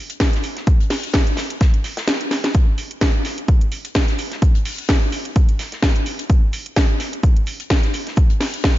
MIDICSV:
0, 0, Header, 1, 2, 480
1, 0, Start_track
1, 0, Tempo, 468750
1, 688, Time_signature, 4, 2, 24, 8
1, 8996, End_track
2, 0, Start_track
2, 0, Title_t, "Drums"
2, 100, Note_on_c, 9, 42, 50
2, 106, Note_off_c, 9, 42, 0
2, 106, Note_on_c, 9, 42, 44
2, 205, Note_on_c, 9, 38, 115
2, 207, Note_off_c, 9, 42, 0
2, 207, Note_on_c, 9, 36, 95
2, 207, Note_on_c, 9, 42, 64
2, 209, Note_off_c, 9, 38, 0
2, 209, Note_on_c, 9, 38, 117
2, 214, Note_on_c, 9, 82, 78
2, 309, Note_off_c, 9, 42, 0
2, 310, Note_off_c, 9, 36, 0
2, 311, Note_off_c, 9, 38, 0
2, 316, Note_off_c, 9, 82, 0
2, 340, Note_on_c, 9, 42, 38
2, 355, Note_on_c, 9, 38, 42
2, 442, Note_off_c, 9, 42, 0
2, 444, Note_on_c, 9, 82, 63
2, 447, Note_on_c, 9, 46, 97
2, 457, Note_off_c, 9, 38, 0
2, 546, Note_off_c, 9, 82, 0
2, 550, Note_off_c, 9, 46, 0
2, 580, Note_on_c, 9, 42, 49
2, 581, Note_on_c, 9, 38, 42
2, 683, Note_off_c, 9, 38, 0
2, 683, Note_off_c, 9, 42, 0
2, 685, Note_on_c, 9, 82, 82
2, 687, Note_on_c, 9, 36, 120
2, 687, Note_on_c, 9, 42, 64
2, 788, Note_off_c, 9, 82, 0
2, 789, Note_off_c, 9, 42, 0
2, 790, Note_off_c, 9, 36, 0
2, 823, Note_on_c, 9, 42, 40
2, 923, Note_on_c, 9, 46, 78
2, 925, Note_on_c, 9, 38, 59
2, 926, Note_off_c, 9, 42, 0
2, 927, Note_off_c, 9, 46, 0
2, 927, Note_on_c, 9, 46, 102
2, 1027, Note_off_c, 9, 38, 0
2, 1029, Note_off_c, 9, 46, 0
2, 1059, Note_on_c, 9, 42, 54
2, 1162, Note_off_c, 9, 42, 0
2, 1162, Note_on_c, 9, 38, 116
2, 1165, Note_off_c, 9, 38, 0
2, 1165, Note_on_c, 9, 38, 123
2, 1167, Note_on_c, 9, 36, 97
2, 1167, Note_on_c, 9, 42, 71
2, 1172, Note_on_c, 9, 82, 85
2, 1268, Note_off_c, 9, 38, 0
2, 1269, Note_off_c, 9, 42, 0
2, 1270, Note_off_c, 9, 36, 0
2, 1274, Note_off_c, 9, 82, 0
2, 1299, Note_on_c, 9, 42, 39
2, 1401, Note_off_c, 9, 42, 0
2, 1402, Note_on_c, 9, 38, 101
2, 1406, Note_on_c, 9, 46, 100
2, 1410, Note_on_c, 9, 82, 74
2, 1504, Note_off_c, 9, 38, 0
2, 1508, Note_off_c, 9, 46, 0
2, 1513, Note_off_c, 9, 82, 0
2, 1539, Note_on_c, 9, 42, 53
2, 1642, Note_off_c, 9, 42, 0
2, 1646, Note_on_c, 9, 42, 71
2, 1648, Note_on_c, 9, 36, 117
2, 1649, Note_on_c, 9, 38, 100
2, 1652, Note_on_c, 9, 82, 81
2, 1749, Note_off_c, 9, 42, 0
2, 1750, Note_off_c, 9, 36, 0
2, 1752, Note_off_c, 9, 38, 0
2, 1755, Note_off_c, 9, 82, 0
2, 1779, Note_on_c, 9, 42, 39
2, 1882, Note_off_c, 9, 42, 0
2, 1885, Note_on_c, 9, 38, 36
2, 1887, Note_on_c, 9, 46, 95
2, 1887, Note_on_c, 9, 82, 52
2, 1988, Note_off_c, 9, 38, 0
2, 1989, Note_off_c, 9, 46, 0
2, 1990, Note_off_c, 9, 82, 0
2, 2019, Note_on_c, 9, 38, 109
2, 2020, Note_on_c, 9, 42, 54
2, 2023, Note_on_c, 9, 82, 74
2, 2121, Note_off_c, 9, 38, 0
2, 2122, Note_off_c, 9, 42, 0
2, 2123, Note_off_c, 9, 82, 0
2, 2123, Note_on_c, 9, 82, 85
2, 2125, Note_on_c, 9, 38, 114
2, 2127, Note_on_c, 9, 42, 67
2, 2129, Note_off_c, 9, 38, 0
2, 2129, Note_on_c, 9, 38, 97
2, 2225, Note_off_c, 9, 82, 0
2, 2229, Note_off_c, 9, 42, 0
2, 2232, Note_off_c, 9, 38, 0
2, 2259, Note_on_c, 9, 42, 40
2, 2362, Note_off_c, 9, 42, 0
2, 2365, Note_on_c, 9, 38, 55
2, 2366, Note_off_c, 9, 38, 0
2, 2366, Note_on_c, 9, 38, 57
2, 2366, Note_on_c, 9, 46, 95
2, 2374, Note_on_c, 9, 82, 55
2, 2469, Note_off_c, 9, 38, 0
2, 2469, Note_off_c, 9, 46, 0
2, 2476, Note_off_c, 9, 82, 0
2, 2499, Note_on_c, 9, 38, 71
2, 2499, Note_on_c, 9, 42, 53
2, 2602, Note_off_c, 9, 38, 0
2, 2602, Note_off_c, 9, 42, 0
2, 2603, Note_on_c, 9, 82, 76
2, 2606, Note_on_c, 9, 42, 63
2, 2608, Note_on_c, 9, 36, 123
2, 2706, Note_off_c, 9, 82, 0
2, 2708, Note_off_c, 9, 42, 0
2, 2710, Note_off_c, 9, 36, 0
2, 2845, Note_on_c, 9, 82, 62
2, 2846, Note_on_c, 9, 46, 104
2, 2948, Note_off_c, 9, 46, 0
2, 2948, Note_off_c, 9, 82, 0
2, 2979, Note_on_c, 9, 42, 56
2, 3082, Note_off_c, 9, 42, 0
2, 3086, Note_on_c, 9, 38, 124
2, 3087, Note_on_c, 9, 42, 72
2, 3088, Note_on_c, 9, 36, 101
2, 3089, Note_off_c, 9, 38, 0
2, 3089, Note_on_c, 9, 38, 111
2, 3090, Note_on_c, 9, 82, 77
2, 3189, Note_off_c, 9, 42, 0
2, 3190, Note_off_c, 9, 36, 0
2, 3192, Note_off_c, 9, 38, 0
2, 3192, Note_off_c, 9, 82, 0
2, 3327, Note_on_c, 9, 46, 106
2, 3329, Note_on_c, 9, 38, 52
2, 3335, Note_on_c, 9, 82, 57
2, 3429, Note_off_c, 9, 46, 0
2, 3432, Note_off_c, 9, 38, 0
2, 3438, Note_off_c, 9, 82, 0
2, 3460, Note_on_c, 9, 42, 54
2, 3562, Note_off_c, 9, 42, 0
2, 3565, Note_on_c, 9, 82, 77
2, 3567, Note_on_c, 9, 42, 68
2, 3568, Note_on_c, 9, 36, 116
2, 3667, Note_off_c, 9, 82, 0
2, 3669, Note_off_c, 9, 42, 0
2, 3670, Note_off_c, 9, 36, 0
2, 3700, Note_on_c, 9, 42, 37
2, 3803, Note_off_c, 9, 42, 0
2, 3807, Note_on_c, 9, 46, 101
2, 3809, Note_on_c, 9, 82, 70
2, 3909, Note_off_c, 9, 46, 0
2, 3911, Note_off_c, 9, 82, 0
2, 3940, Note_on_c, 9, 42, 53
2, 3944, Note_off_c, 9, 42, 0
2, 3944, Note_on_c, 9, 42, 43
2, 4044, Note_on_c, 9, 82, 91
2, 4045, Note_on_c, 9, 38, 102
2, 4046, Note_off_c, 9, 38, 0
2, 4046, Note_off_c, 9, 42, 0
2, 4046, Note_on_c, 9, 38, 122
2, 4047, Note_on_c, 9, 42, 64
2, 4048, Note_on_c, 9, 36, 101
2, 4146, Note_off_c, 9, 82, 0
2, 4148, Note_off_c, 9, 38, 0
2, 4150, Note_off_c, 9, 36, 0
2, 4150, Note_off_c, 9, 42, 0
2, 4180, Note_on_c, 9, 42, 38
2, 4183, Note_on_c, 9, 38, 46
2, 4282, Note_off_c, 9, 42, 0
2, 4285, Note_on_c, 9, 82, 74
2, 4286, Note_off_c, 9, 38, 0
2, 4287, Note_on_c, 9, 46, 105
2, 4387, Note_off_c, 9, 82, 0
2, 4389, Note_off_c, 9, 46, 0
2, 4419, Note_on_c, 9, 38, 47
2, 4419, Note_on_c, 9, 42, 53
2, 4521, Note_off_c, 9, 38, 0
2, 4522, Note_off_c, 9, 42, 0
2, 4527, Note_on_c, 9, 42, 66
2, 4528, Note_on_c, 9, 36, 124
2, 4531, Note_on_c, 9, 82, 89
2, 4629, Note_off_c, 9, 42, 0
2, 4630, Note_off_c, 9, 36, 0
2, 4633, Note_off_c, 9, 82, 0
2, 4659, Note_on_c, 9, 42, 48
2, 4761, Note_off_c, 9, 42, 0
2, 4764, Note_on_c, 9, 46, 82
2, 4766, Note_off_c, 9, 46, 0
2, 4766, Note_on_c, 9, 46, 107
2, 4869, Note_off_c, 9, 46, 0
2, 4899, Note_on_c, 9, 42, 54
2, 5001, Note_off_c, 9, 42, 0
2, 5003, Note_on_c, 9, 82, 79
2, 5005, Note_on_c, 9, 38, 127
2, 5007, Note_off_c, 9, 38, 0
2, 5007, Note_on_c, 9, 38, 108
2, 5007, Note_on_c, 9, 42, 69
2, 5008, Note_on_c, 9, 36, 100
2, 5106, Note_off_c, 9, 82, 0
2, 5109, Note_off_c, 9, 38, 0
2, 5109, Note_off_c, 9, 42, 0
2, 5110, Note_off_c, 9, 36, 0
2, 5247, Note_on_c, 9, 46, 109
2, 5254, Note_on_c, 9, 82, 60
2, 5349, Note_off_c, 9, 46, 0
2, 5356, Note_off_c, 9, 82, 0
2, 5379, Note_on_c, 9, 42, 52
2, 5481, Note_off_c, 9, 42, 0
2, 5486, Note_on_c, 9, 42, 65
2, 5488, Note_on_c, 9, 36, 117
2, 5490, Note_on_c, 9, 82, 76
2, 5589, Note_off_c, 9, 42, 0
2, 5590, Note_off_c, 9, 36, 0
2, 5593, Note_off_c, 9, 82, 0
2, 5619, Note_on_c, 9, 42, 39
2, 5721, Note_off_c, 9, 42, 0
2, 5726, Note_on_c, 9, 46, 106
2, 5728, Note_on_c, 9, 82, 62
2, 5729, Note_on_c, 9, 38, 51
2, 5828, Note_off_c, 9, 46, 0
2, 5830, Note_off_c, 9, 82, 0
2, 5831, Note_off_c, 9, 38, 0
2, 5859, Note_on_c, 9, 42, 52
2, 5861, Note_on_c, 9, 38, 37
2, 5962, Note_off_c, 9, 42, 0
2, 5963, Note_off_c, 9, 38, 0
2, 5965, Note_on_c, 9, 38, 119
2, 5966, Note_on_c, 9, 42, 65
2, 5967, Note_off_c, 9, 38, 0
2, 5967, Note_on_c, 9, 38, 121
2, 5968, Note_on_c, 9, 36, 106
2, 5971, Note_on_c, 9, 82, 81
2, 6069, Note_off_c, 9, 38, 0
2, 6069, Note_off_c, 9, 42, 0
2, 6070, Note_off_c, 9, 36, 0
2, 6073, Note_off_c, 9, 82, 0
2, 6099, Note_on_c, 9, 42, 36
2, 6202, Note_off_c, 9, 42, 0
2, 6206, Note_on_c, 9, 82, 65
2, 6207, Note_on_c, 9, 46, 106
2, 6308, Note_off_c, 9, 82, 0
2, 6309, Note_off_c, 9, 46, 0
2, 6340, Note_on_c, 9, 42, 51
2, 6343, Note_off_c, 9, 42, 0
2, 6343, Note_on_c, 9, 42, 42
2, 6446, Note_off_c, 9, 42, 0
2, 6447, Note_on_c, 9, 42, 61
2, 6448, Note_on_c, 9, 36, 127
2, 6449, Note_on_c, 9, 82, 84
2, 6550, Note_off_c, 9, 36, 0
2, 6550, Note_off_c, 9, 42, 0
2, 6551, Note_off_c, 9, 82, 0
2, 6686, Note_on_c, 9, 82, 72
2, 6688, Note_on_c, 9, 46, 110
2, 6789, Note_off_c, 9, 82, 0
2, 6790, Note_off_c, 9, 46, 0
2, 6821, Note_on_c, 9, 42, 50
2, 6923, Note_off_c, 9, 42, 0
2, 6927, Note_on_c, 9, 38, 121
2, 6928, Note_on_c, 9, 36, 108
2, 6928, Note_on_c, 9, 42, 64
2, 6929, Note_off_c, 9, 38, 0
2, 6929, Note_on_c, 9, 38, 112
2, 6933, Note_on_c, 9, 82, 91
2, 7030, Note_off_c, 9, 36, 0
2, 7031, Note_off_c, 9, 38, 0
2, 7031, Note_off_c, 9, 42, 0
2, 7036, Note_off_c, 9, 82, 0
2, 7165, Note_on_c, 9, 38, 51
2, 7168, Note_on_c, 9, 46, 113
2, 7171, Note_on_c, 9, 82, 65
2, 7267, Note_off_c, 9, 38, 0
2, 7270, Note_off_c, 9, 46, 0
2, 7273, Note_off_c, 9, 82, 0
2, 7302, Note_on_c, 9, 42, 49
2, 7405, Note_off_c, 9, 42, 0
2, 7408, Note_on_c, 9, 36, 127
2, 7409, Note_on_c, 9, 42, 62
2, 7409, Note_on_c, 9, 82, 83
2, 7510, Note_off_c, 9, 36, 0
2, 7511, Note_off_c, 9, 42, 0
2, 7512, Note_off_c, 9, 82, 0
2, 7542, Note_on_c, 9, 42, 35
2, 7641, Note_on_c, 9, 82, 68
2, 7644, Note_off_c, 9, 42, 0
2, 7648, Note_on_c, 9, 46, 103
2, 7743, Note_off_c, 9, 82, 0
2, 7751, Note_off_c, 9, 46, 0
2, 7781, Note_on_c, 9, 42, 50
2, 7785, Note_off_c, 9, 42, 0
2, 7785, Note_on_c, 9, 42, 44
2, 7887, Note_off_c, 9, 42, 0
2, 7887, Note_on_c, 9, 38, 123
2, 7888, Note_on_c, 9, 36, 112
2, 7888, Note_on_c, 9, 82, 76
2, 7889, Note_off_c, 9, 38, 0
2, 7889, Note_on_c, 9, 38, 113
2, 7889, Note_on_c, 9, 42, 61
2, 7990, Note_off_c, 9, 82, 0
2, 7991, Note_off_c, 9, 36, 0
2, 7991, Note_off_c, 9, 38, 0
2, 7991, Note_off_c, 9, 42, 0
2, 8021, Note_on_c, 9, 42, 36
2, 8022, Note_on_c, 9, 38, 41
2, 8124, Note_off_c, 9, 38, 0
2, 8124, Note_off_c, 9, 42, 0
2, 8129, Note_on_c, 9, 46, 107
2, 8130, Note_on_c, 9, 82, 72
2, 8231, Note_off_c, 9, 46, 0
2, 8233, Note_off_c, 9, 82, 0
2, 8261, Note_on_c, 9, 42, 48
2, 8267, Note_on_c, 9, 38, 44
2, 8362, Note_on_c, 9, 82, 89
2, 8364, Note_off_c, 9, 42, 0
2, 8368, Note_on_c, 9, 36, 127
2, 8369, Note_off_c, 9, 38, 0
2, 8369, Note_on_c, 9, 42, 62
2, 8464, Note_off_c, 9, 82, 0
2, 8471, Note_off_c, 9, 36, 0
2, 8471, Note_off_c, 9, 42, 0
2, 8499, Note_on_c, 9, 42, 43
2, 8601, Note_off_c, 9, 42, 0
2, 8607, Note_on_c, 9, 38, 60
2, 8607, Note_on_c, 9, 46, 84
2, 8608, Note_off_c, 9, 46, 0
2, 8608, Note_on_c, 9, 46, 107
2, 8709, Note_off_c, 9, 38, 0
2, 8711, Note_off_c, 9, 46, 0
2, 8741, Note_on_c, 9, 42, 48
2, 8844, Note_off_c, 9, 42, 0
2, 8846, Note_on_c, 9, 38, 116
2, 8848, Note_off_c, 9, 38, 0
2, 8848, Note_on_c, 9, 36, 107
2, 8848, Note_on_c, 9, 38, 118
2, 8848, Note_on_c, 9, 42, 62
2, 8855, Note_on_c, 9, 82, 82
2, 8950, Note_off_c, 9, 36, 0
2, 8950, Note_off_c, 9, 38, 0
2, 8950, Note_off_c, 9, 42, 0
2, 8958, Note_off_c, 9, 82, 0
2, 8996, End_track
0, 0, End_of_file